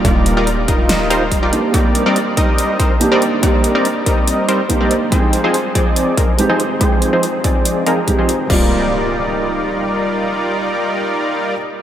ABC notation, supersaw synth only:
X:1
M:4/4
L:1/16
Q:1/4=142
K:Eb
V:1 name="Supersaw synth"
[G,EFBd]3 [G,EFBd] z2 [G,EFBe]4 [G,EFBc] z2 [G,EFBd] z2 | [G,CEBd]3 [G,CEBd] z2 [G,CEBe]4 [G,CEBc] z2 [G,CEBd] z2 | [G,CEBd]3 [G,CEBd] z2 [G,CEBe]4 [G,CEBc] z2 [G,CEBd] z2 | [F,CEAc]3 [F,CEAc] z2 [F,CEAd]4 [F,CEAB] z2 [F,CEAc] z2 |
[F,CEAc]3 [F,CEAc] z2 [F,CEAd]4 [F,CEAB] z2 [F,CEAc] z2 | [G,EFBd]16- | [G,EFBd]16 |]